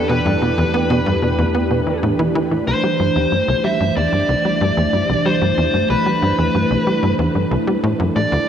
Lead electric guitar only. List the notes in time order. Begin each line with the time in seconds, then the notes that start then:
0.09 B4
2.67 C5
3.64 E5
3.96 D5
5.26 C5
5.90 B4
8.16 D5